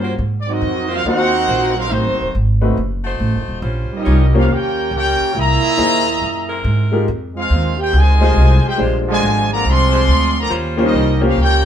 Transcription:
Already playing: G2 A#3 C#4 F4 G4 C5
0.02 A#3 F4 F#4 C5
0.19 G#2
0.41 D5
0.47 F#3 C4 D#4 A#4
0.51 C4 F#4 D#5
0.62 F2
0.88 F#3 A#3 C4 F4 F#4 C5
0.93 D#4 A#4 C5 F5
1.04 D#2 A#3 C4 D#4 F4 F#4 A#4 C5 F#5
1.47 A#1 A#3 F4 F#4 C5
1.75 F#3 C4 D#4 F4 C5 F5
1.79 A#4
1.89 A1 D#3 F#3 A3 C4 D#4 F#4 C5
2.06 F#1
2.21 D#1
2.35 G#1
2.61 A3 C4 D#4 F#4 B4
2.77 F#1
3.04 A3 D#4 F#4 C5
3.20 A1
3.34 F#1
3.48 D#1
3.62 A#1 G3 C#4 F4 C5
3.91 G3 A#3 D#4, muted upright bass stroke
3.96 C#4 G4 A#4 D#5
4.05 C2 G3 C#4 F4 C#5
4.34 A#3 C#4 F4 G4 A#4 C5 F5
4.46 D#2 A#3 C#4 G4 F5
4.52 F4 A#4 C#5 G5
4.91 C#2 A#3 C#4 G4
4.95 F4 A#4 C#5 G5
5.20 muted upright bass stroke
5.34 C2 A#2 A#3 E4 G#4
5.39 D#5 E5 A#5
5.77 D#2 A#3 D#4 E4 G#4 C5
6.21 F#2
6.49 G#3 C4 E4 A#4
6.64 G#2
6.92 G#3 D#4 F4 G4 A#4
7.08 F2
7.35 G#3 C4 D#4 F4 G#4 C5 F5
7.50 D#2
7.78 D#4 G4 G#4 C5 G5
7.93 C#2 C3 D#3 G#3 F4 C5 D#5 G#5
8.20 F3 G3 G#3 D#4 F4 C5
8.36 C2
8.65 D#4 G4 G#4 C5 G5
8.78 A#1 G3 G#3 D4 F4 G4 C5
9.06 D3 F3 G#3 F4 C5
9.11 D5 G#5
9.22 G#1
9.51 D3 F3 A#3 G#4 D5 F5 A#5
9.65 C2 F3 G#3 C4 G#4 D5 C6
9.69 F5
9.91 G#3 D4 G4 C5
10.08 D2
10.38 D3 F3 A#3 G#4 D5 F5 A#5
10.49 D#2 G3 C#4 F4 C5
10.77 A#3 C#4 F4 G4 C5
10.81 G3 A#3 C#4 D#4 G4 A#4 D#5
10.93 C2 G3 C#4 F4 C5
11.21 A#3 C#4 F4 G4 C5
11.25 A#3 C#4 F4 G4 A#4 F5
11.37 C#2 A#3
11.41 C#4 F4 G4 A#4 C#5 G5

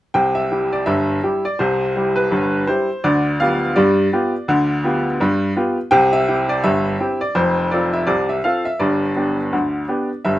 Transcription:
0.14 C2 C3 G5
0.35 E5
0.51 G3 E4 G4
0.73 D5
0.86 G1 G2 E5
1.23 G3 E4 G4
1.45 D5
1.59 C2 C3 C5
1.96 G3 E4 G4
2.16 B4
2.32 G1 G2
2.67 G3 E4 G4 C5
3.04 D2 D3 D5
3.40 B3 F4 G4 F5
3.76 G2 G3 D5
4.13 B3 F4 G4
4.48 D2 D3
4.84 B3 F4 G4
5.20 G2 G3
5.56 B3 F4 G4
5.91 C2 C3 G5
6.13 E5
6.28 C4 E4 G4
6.49 D5
6.64 G1 G2 E5
7.00 C4 E4 G4
7.21 D5
7.35 F1 F2 C5
7.71 C4 F4 A4 D5
7.93 E5
8.07 C2 C3 D5
8.29 E5
8.44 C4 F4 A4 F5
8.65 E5
8.80 G1 G2 D5
9.16 B3 D4 G4
9.53 D2 D3
9.88 B3 D4 G4
10.25 G1 G2 E5

